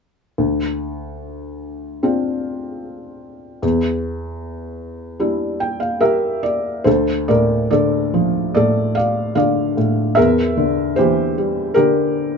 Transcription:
0.38 3.58 D2 soft
2.03 3.58 C4 soft
2.03 3.58 D4 soft
2.03 3.59 F4 soft
3.62 6.82 E2 soft
5.20 6.83 G3 soft
5.20 6.83 D4 soft
5.20 6.83 E4 soft
5.60 5.80 G5 soft
5.80 6.00 F5 medium
6.00 6.83 G4 soft
6.00 6.88 A#4 medium
6.00 6.41 E5 soft
6.43 6.83 D5 soft
6.84 10.12 D2 soft
6.84 7.27 A4 soft
6.84 7.30 C5 medium
7.28 8.54 A2 soft
7.28 7.69 A#4 soft
7.28 7.69 D5 medium
7.71 9.32 D3 soft
7.71 8.52 A4 soft
7.71 8.53 D5 medium
8.14 9.73 F3 soft
8.55 9.76 A2 soft
8.55 8.94 A4 soft
8.55 8.96 D5 medium
8.95 9.34 D5 soft
8.95 9.34 F5 medium
9.35 10.14 D3 soft
9.35 10.13 D5 soft
9.35 10.19 F5 medium
9.77 10.16 A2 soft
10.15 12.38 E2 soft
10.15 10.92 A#4 medium
10.15 10.98 E5 medium
10.57 11.76 D3 soft
10.96 12.38 E3 soft
10.96 11.72 G4 medium
10.96 11.71 C5 medium
11.38 12.38 G3 soft
11.74 12.38 D3 soft
11.74 12.38 G4 medium
11.74 12.38 A#4 medium

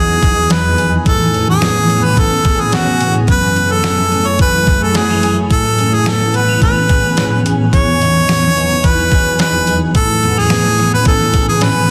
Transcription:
0.00 1.04 E2 medium
0.00 1.06 E2 medium
0.00 2.17 E3 medium
0.00 3.24 E3 medium
0.00 1.04 F#3 medium
0.00 1.37 B3 medium
0.00 0.49 D#4 medium
0.00 1.04 D#4 medium
0.00 0.22 G#4 medium
0.00 0.54 G#4 medium
0.00 11.90 G#5 medium
0.23 0.78 G#4 medium
0.23 kick medium
0.23 closed hi-hat soft
0.50 1.12 D#4 medium
0.50 0.93 B4 medium
0.50 snare medium
0.50 closed hi-hat medium
0.78 2.44 G#4 medium
0.78 closed hi-hat soft
1.06 3.28 A2 medium
1.06 3.26 A2 medium
1.06 3.26 B3 medium
1.06 3.26 C#4 medium
1.06 1.46 A4 medium
1.06 kick medium
1.06 closed hi-hat medium
1.34 1.89 C#4 soft
1.34 closed hi-hat soft
1.50 2.07 G#4 medium
1.62 3.34 B3 medium
1.62 snare loud
1.62 closed hi-hat medium
1.89 2.73 C#4 medium
1.89 closed hi-hat soft
2.05 2.21 B4 medium
2.17 4.39 E3 medium
2.17 2.62 A4 medium
2.17 kick medium
2.17 closed hi-hat medium
2.45 3.00 G#4 medium
2.45 kick loud
2.45 closed hi-hat soft
2.61 2.76 G#4 medium
2.72 3.56 C#4 soft
2.72 3.15 F#4 medium
2.72 snare medium
2.72 closed hi-hat medium
3.00 3.87 G#4 medium
3.00 closed hi-hat medium
3.27 5.48 F#2 medium
3.27 5.51 F#2 medium
3.27 5.48 F#3 medium
3.27 5.48 A3 medium
3.27 5.48 E4 medium
3.27 3.73 B4 medium
3.27 kick medium
3.27 closed hi-hat soft
3.56 4.11 C#4 medium
3.56 closed hi-hat soft
3.72 4.29 A4 medium
3.84 6.06 A3 medium
3.84 snare loud
3.84 closed hi-hat medium
4.12 4.95 C#4 medium
4.12 closed hi-hat soft
4.27 4.40 C#5 medium
4.39 6.61 E3 medium
4.39 4.85 B4 medium
4.39 kick medium
4.39 closed hi-hat medium
4.67 5.23 G#4 medium
4.67 kick medium
4.67 closed hi-hat soft
4.83 4.98 A4 medium
4.95 5.09 B3 medium
4.95 5.37 G#4 medium
4.95 snare medium
4.95 closed hi-hat medium
5.09 5.56 C#4 soft
5.23 6.89 G#4 medium
5.23 closed hi-hat medium
5.50 7.70 A2 medium
5.50 7.73 A2 medium
5.50 11.90 E3 medium
5.50 7.70 B3 medium
5.50 7.70 C#4 medium
5.50 5.95 A4 medium
5.50 kick medium
5.50 closed hi-hat medium
5.78 6.34 C#4 medium
5.78 closed hi-hat soft
5.94 6.10 G#4 medium
6.06 6.34 B3 medium
6.06 6.38 A4 medium
6.06 snare medium
6.06 closed hi-hat medium
6.34 6.48 B3 medium
6.34 6.62 B4 medium
6.34 closed hi-hat soft
6.48 7.16 C#4 soft
6.62 8.04 E3 medium
6.62 7.42 B4 medium
6.62 kick medium
6.62 closed hi-hat medium
6.89 7.45 G#4 medium
6.89 kick medium
6.89 closed hi-hat soft
7.17 7.78 C#4 medium
7.17 snare medium
7.17 closed hi-hat medium
7.45 9.12 G#4 medium
7.45 closed hi-hat medium
7.72 9.93 E2 medium
7.72 9.95 E2 medium
7.72 9.92 F#3 medium
7.72 9.93 D#4 medium
7.72 8.87 C#5 loud
7.72 kick medium
7.72 closed hi-hat medium
8.01 8.55 D#4 medium
8.01 closed hi-hat soft
8.28 10.23 B3 medium
8.28 snare medium
8.28 closed hi-hat medium
8.57 9.39 D#4 medium
8.57 closed hi-hat soft
8.84 11.05 E3 medium
8.84 9.40 B4 medium
8.84 kick medium
8.84 closed hi-hat medium
9.12 9.67 G#4 medium
9.12 kick medium
9.12 closed hi-hat soft
9.39 10.01 D#4 medium
9.39 9.79 B4 medium
9.39 snare medium
9.39 closed hi-hat medium
9.67 11.33 G#4 medium
9.67 closed hi-hat medium
9.95 11.90 A2 medium
9.95 11.90 B3 medium
9.95 11.90 C#4 medium
9.95 10.40 A4 medium
9.95 kick medium
9.95 closed hi-hat medium
10.23 10.37 B3 medium
10.23 closed hi-hat soft
10.37 10.77 C#4 medium
10.37 10.93 G#4 medium
10.50 11.90 B3 medium
10.50 snare medium
10.50 closed hi-hat medium
10.78 11.61 C#4 medium
10.78 closed hi-hat soft
10.94 11.06 B4 medium
11.05 11.90 E3 medium
11.05 11.46 A4 medium
11.05 kick medium
11.05 closed hi-hat medium
11.34 11.89 G#4 medium
11.34 kick medium
11.34 closed hi-hat soft
11.49 11.65 G#4 medium
11.61 11.90 C#4 medium
11.61 11.90 B4 medium
11.61 snare medium
11.61 closed hi-hat medium

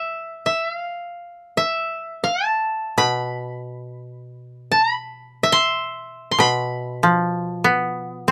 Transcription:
0.00 0.46 E5 medium
0.46 0.72 E5 medium
0.72 1.63 F5 medium
1.57 3.07 E5 medium
2.24 2.47 F5 medium
2.47 3.49 A5 medium
2.98 6.36 B2 soft
2.98 4.67 B5 medium
4.72 4.92 A5 medium
4.92 5.58 B5 medium
5.43 6.93 E5 medium
5.52 6.31 C6 medium
6.31 6.46 C6 medium
6.38 8.31 B2 medium
6.38 8.31 B5 medium
7.03 8.31 F3 soft
7.64 8.31 B3 soft
8.28 8.31 C4 soft

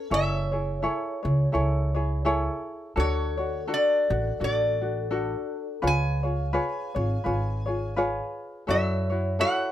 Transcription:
0.00 0.11 C#4 medium
0.00 0.10 A4 medium
0.10 0.85 F#1 medium
0.10 0.53 E4 medium
0.10 0.52 G#4 medium
0.10 0.51 A4 medium
0.10 2.22 C#5 medium
0.10 0.51 C#5 medium
0.10 2.23 E5 medium
0.52 0.81 E4 soft
0.52 0.82 G#4 soft
0.52 0.82 C#5 medium
0.82 1.23 E4 medium
0.82 1.23 G#4 medium
0.82 1.22 A4 medium
0.82 1.22 C#5 medium
1.23 1.44 C#2 loud
1.23 1.52 E4 soft
1.23 1.52 G#4 medium
1.23 1.52 C#5 medium
1.52 2.47 C#2 medium
1.52 1.95 E4 medium
1.52 1.95 G#4 medium
1.52 1.94 A4 medium
1.52 1.93 C#5 medium
1.95 2.24 E4 medium
1.95 2.24 G#4 medium
1.95 2.24 C#5 medium
2.25 2.96 E4 medium
2.25 2.96 G#4 loud
2.25 2.96 A4 medium
2.25 2.95 C#5 loud
2.96 3.71 D2 loud
2.96 3.38 D4 medium
2.96 3.38 F#4 medium
2.96 3.38 A4 medium
2.96 3.65 A4 medium
2.96 3.36 C#5 medium
2.96 3.72 C#5 medium
3.37 3.67 D4 soft
3.37 3.68 F#4 soft
3.37 3.67 C#5 medium
3.67 4.09 D4 medium
3.67 4.09 F#4 medium
3.67 4.09 A4 medium
3.67 4.36 A4 medium
3.74 4.43 D5 medium
4.10 4.30 A1 loud
4.10 4.39 D4 soft
4.10 4.40 F#4 medium
4.40 5.34 A1 medium
4.40 4.80 D4 medium
4.40 4.80 F#4 medium
4.40 4.81 A4 medium
4.40 5.79 A4 medium
4.44 5.81 D5 medium
4.81 5.10 D4 soft
4.81 5.11 F#4 medium
5.11 5.82 D4 medium
5.11 5.82 F#4 medium
5.11 5.82 A4 medium
5.82 6.57 C#2 medium
5.82 6.24 F4 medium
5.82 6.23 G#4 medium
5.82 6.24 B4 medium
5.82 6.22 C#5 medium
5.82 7.94 F5 medium
5.87 7.95 G#5 medium
6.23 6.52 F4 soft
6.23 6.53 G#4 soft
6.23 6.53 C#5 soft
6.53 6.95 F4 medium
6.53 6.95 G#4 medium
6.53 6.95 B4 medium
6.53 6.93 C#5 medium
6.95 7.15 G#1 loud
6.95 7.23 F4 soft
6.95 7.24 G#4 medium
6.95 7.25 C#5 medium
7.24 8.19 G#1 medium
7.24 7.67 F4 medium
7.24 7.66 G#4 medium
7.24 7.66 B4 medium
7.24 7.65 C#5 medium
7.66 7.96 F4 soft
7.66 7.96 G#4 soft
7.66 7.96 C#5 medium
7.96 8.68 F4 medium
7.96 8.67 G#4 medium
7.96 8.68 B4 medium
7.96 8.67 C#5 medium
8.67 9.42 F#2 medium
8.67 9.10 E4 medium
8.67 9.10 F#4 medium
8.67 9.09 A4 medium
8.67 9.35 C#5 medium
8.67 9.08 C#5 medium
8.67 9.43 E5 medium
9.10 9.39 E4 soft
9.10 9.39 F#4 soft
9.10 9.39 C#5 medium
9.39 9.72 E4 medium
9.39 9.72 F#4 medium
9.39 9.72 A4 medium
9.39 9.72 C#5 medium
9.39 9.72 F#5 loud

